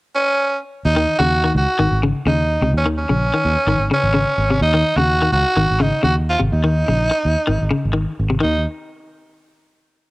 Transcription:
0.15 tenor saxophone C#4
0.85 fingered electric bass D#2, tenor saxophone D#4
0.96 clean electric guitar D#3
1.18 fingered electric bass D#2, clean electric guitar C#3, tenor saxophone F#4
1.44 clean electric guitar D#3
1.55 fingered electric bass C#2, tenor saxophone F#4
1.79 fingered electric bass G#1, clean electric guitar D#3
1.91 fingered electric bass G#1
2.03 clean electric guitar C#3
2.26 fingered electric bass D#2, clean electric guitar C#3, tenor saxophone D#4
2.61 fingered electric bass C#2, clean electric guitar C3
2.73 fingered electric bass D#2
2.77 tenor saxophone C#4
2.86 clean electric guitar D#3
2.98 tenor saxophone C#4
3.09 fingered electric bass A#1, clean electric guitar C#3
3.34 clean electric guitar D#3
3.45 fingered electric bass D#2
3.67 fingered electric bass G#1, clean electric guitar D#3
3.79 fingered electric bass G#1
3.91 clean electric guitar C#3, tenor saxophone C#4
4.03 fingered electric bass G#1
4.14 clean electric guitar C#3
4.38 fingered electric bass G#1
4.50 clean electric guitar C3
4.61 fingered electric bass D#2, tenor saxophone D#4
4.74 clean electric guitar D#3
4.96 fingered electric bass D#2, clean electric guitar C#3, tenor saxophone F#4
5.22 clean electric guitar D#3
5.32 fingered electric bass C#2, tenor saxophone F#4
5.57 fingered electric bass G#1, clean electric guitar D#3
5.70 fingered electric bass G#1
5.80 clean electric guitar C#3, tenor saxophone D#4
6.03 fingered electric bass D#2, clean electric guitar C#3, tenor saxophone F#4
6.30 tenor saxophone F4
6.39 fingered electric bass G#1, clean electric guitar C3
6.52 fingered electric bass D#2, tenor saxophone D#4
6.64 clean electric guitar D#3
6.88 fingered electric bass A#1, clean electric guitar C#3
7.11 muted clean electric guitar stroke
7.25 fingered electric bass D#2
7.47 fingered electric bass G#1, clean electric guitar D#3
7.61 fingered electric bass G#1
7.71 clean electric guitar C#3
7.85 fingered electric bass G#1
7.93 clean electric guitar D#3
8.19 fingered electric bass G#1
8.30 clean electric guitar C3
8.40 fingered electric bass D#2, clean electric guitar D#3, tenor saxophone D#4

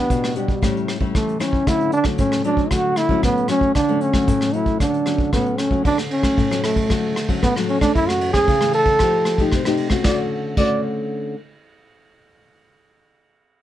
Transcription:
Already playing: nylon-string guitar B3 D4 G4, trombone B3
0.10 nylon-string guitar B2, kick, closed hi-hat
0.24 cross-stick
0.36 trombone G3, nylon-string guitar B3 D4 G4, closed hi-hat
0.48 kick, closed hi-hat
0.62 nylon-string guitar A2 G3 C#4 E4, kick, cross-stick, closed hi-hat
0.77 closed hi-hat
0.88 cross-stick, closed hi-hat
1.00 nylon-string guitar G3 C#4 E4, kick
1.14 nylon-string guitar E3, trombone A3, kick, cross-stick, closed hi-hat
1.29 closed hi-hat
1.40 nylon-string guitar G3 C#4 E4, trombone C#4, cross-stick, closed hi-hat
1.53 kick
1.66 nylon-string guitar D3 F#3 A3 C#4, trombone E4, kick, cross-stick, closed hi-hat
1.81 closed hi-hat
1.92 trombone D4, closed hi-hat
2.04 nylon-string guitar F#3 A3 C#4, kick, cross-stick
2.18 nylon-string guitar A2, trombone C#4, kick, closed hi-hat
2.32 cross-stick, closed hi-hat
2.44 nylon-string guitar F#3 A3 C#4, trombone D4, closed hi-hat
2.57 kick
2.71 nylon-string guitar D3 F#3 A3 C#4, trombone F#4, kick, cross-stick, closed hi-hat
2.96 trombone E4, cross-stick, closed hi-hat
3.09 nylon-string guitar F#3 A3 C#4, kick
3.23 nylon-string guitar A2, trombone B3, kick, cross-stick, closed hi-hat
3.37 closed hi-hat
3.48 nylon-string guitar F#3 A3 C#4, trombone C#4, cross-stick, closed hi-hat
3.61 kick
3.75 nylon-string guitar D3, trombone D4, kick, cross-stick, closed hi-hat
3.88 nylon-string guitar F#3 A3 C#4, closed hi-hat
4.01 trombone C#4, closed hi-hat
4.13 nylon-string guitar F#3 A3 C#4, kick, cross-stick
4.27 nylon-string guitar A2, kick, closed hi-hat
4.41 cross-stick
4.53 nylon-string guitar F#3 A3 C#4, trombone E4, closed hi-hat
4.66 kick, closed hi-hat
4.80 nylon-string guitar D3, trombone D4, kick, cross-stick, closed hi-hat
4.94 closed hi-hat
5.06 nylon-string guitar F#3 A3 C#4, cross-stick, closed hi-hat
5.18 kick
5.33 nylon-string guitar A2 F#3 A3 C#4, trombone B3, kick, cross-stick, closed hi-hat
5.46 closed hi-hat
5.58 trombone C#4, cross-stick, closed hi-hat
5.71 nylon-string guitar F#3 A3 C#4, kick
5.84 nylon-string guitar D3, trombone D4, kick, ride
5.98 cross-stick
6.11 trombone C#4, ride
6.22 nylon-string guitar F#3 A3 C#4, kick, cross-stick, ride
6.37 nylon-string guitar A2, kick, ride
6.50 nylon-string guitar F#3 A3 C#4, cross-stick
6.64 trombone A3, cross-stick, ride
6.76 kick, ride
6.90 nylon-string guitar D3 F#3 A3 C#4, kick, cross-stick, ride
7.16 cross-stick, ride
7.28 nylon-string guitar F#3 A3 C#4, kick, ride
7.42 nylon-string guitar A2, trombone B3, kick, cross-stick, ride
7.56 nylon-string guitar F#3 A3 C#4, cross-stick
7.69 trombone C#4, ride
7.81 nylon-string guitar E3 A3 C#4, trombone D4, kick, cross-stick, ride
7.95 nylon-string guitar F#2, trombone E4, kick, ride
8.08 trombone F#4, cross-stick
8.21 ride
8.33 nylon-string guitar E3 A3 C#4, trombone G#4, kick, cross-stick, ride
8.48 nylon-string guitar C#3, kick, ride
8.61 nylon-string guitar E3 A3 C#4, cross-stick
8.73 trombone A4, ride
8.85 kick, ride
8.99 nylon-string guitar F3 A3 D#4 G4, kick, cross-stick, ride
9.25 cross-stick, ride
9.38 nylon-string guitar A3 D#4 G4, kick, ride
9.52 nylon-string guitar C3, kick, cross-stick, ride
9.65 nylon-string guitar A3 D#4 G4, cross-stick
9.77 ride
9.90 nylon-string guitar A3 C#4 F#4, kick, cross-stick, ride
10.04 nylon-string guitar D3 A3 C#4 F#4, trombone D5, kick, snare
10.57 nylon-string guitar D3 A3 C#4 F#4, trombone D5, kick, crash

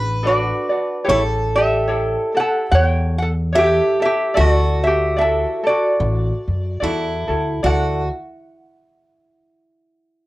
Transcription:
Already playing: upright bass A1, ukulele D4 F#4 D5, steel-string acoustic guitar B4
0.23 ukulele D4 F#4 A4 D5
0.27 resonator guitar played with a steel bar F#4 D5
0.69 ukulele D4 F#4 D5
1.05 upright bass A1, ukulele E4 G4 A4 C#5
1.09 resonator guitar played with a steel bar E4 C#5, steel-string acoustic guitar A4
1.56 resonator guitar played with a steel bar G4 E5
1.87 ukulele E4 G4 A4 C#5
2.35 ukulele E4 G4 A4, resonator guitar played with a steel bar F#5
2.40 resonator guitar played with a steel bar A4
2.72 upright bass E2, resonator guitar played with a steel bar C#5 F#5
2.84 resonator guitar played with a steel bar G5
3.18 resonator guitar played with a steel bar A4 F#5
3.53 ukulele E4 G4 A4 C#5, steel-string acoustic guitar G4, resonator guitar played with a steel bar E5
3.58 resonator guitar played with a steel bar G4
4.00 ukulele E4 G4 A4, resonator guitar played with a steel bar E5
4.05 resonator guitar played with a steel bar G4
4.34 upright bass D2, ukulele E4 A4 D5, steel-string acoustic guitar F#4, resonator guitar played with a steel bar D#5
4.40 resonator guitar played with a steel bar F#4
4.55 resonator guitar played with a steel bar D5
4.84 resonator guitar played with a steel bar G4 E5
5.16 ukulele E4 F#4 A4 D5, resonator guitar played with a steel bar E5
5.21 resonator guitar played with a steel bar A4
5.64 ukulele E4 F#4 A4, resonator guitar played with a steel bar D5
5.69 resonator guitar played with a steel bar F#4
6.00 upright bass A1
6.48 upright bass F#2
6.80 upright bass E2, ukulele E4 F#4 A4 D5, steel-string acoustic guitar E4
7.28 upright bass D2, ukulele E4 F#4 A4
7.63 upright bass D2, ukulele E4 F#4 A4 D5, steel-string acoustic guitar F#4, resonator guitar played with a steel bar F#5

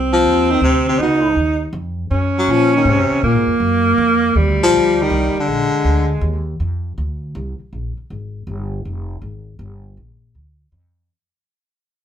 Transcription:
Already playing: upright bass C2, alto saxophone C4
0.13 baritone saxophone F3
0.24 upright bass D#2
0.51 baritone saxophone D#3
0.61 upright bass D2, baritone saxophone C3
0.88 baritone saxophone C3
0.99 upright bass C#2, baritone saxophone B2, alto saxophone D#4
1.36 upright bass D#2
1.73 upright bass F2
2.11 upright bass F#2, alto saxophone C#4
2.38 baritone saxophone F#3
2.48 upright bass A#2, baritone saxophone F3
2.76 baritone saxophone D#3
2.85 upright bass G#2, baritone saxophone C3
2.98 upright bass F#2
3.11 upright bass D#2
3.23 upright bass A#2, baritone saxophone A#2, alto saxophone A#3
3.35 upright bass G#2
3.47 upright bass F2
3.60 upright bass F#2
3.98 upright bass F2
4.35 upright bass D#2, alto saxophone G3
4.48 upright bass D2
4.60 upright bass A#1, baritone saxophone F3
4.73 upright bass D2
5.02 baritone saxophone D#3
5.10 upright bass C2
5.35 muted upright bass stroke
5.40 baritone saxophone D3
5.48 upright bass A#1, alto saxophone G#3
5.73 muted upright bass stroke
5.85 upright bass D2
6.21 upright bass D#2
6.60 upright bass F2
6.98 upright bass D2
7.35 upright bass C2
7.60 muted upright bass stroke
7.73 upright bass A#1
7.97 muted upright bass stroke
8.10 upright bass G#1
8.47 upright bass G1
8.85 upright bass F1
9.22 upright bass G#1
9.59 upright bass G1
9.97 upright bass A#1
10.35 upright bass D2
10.72 upright bass F2

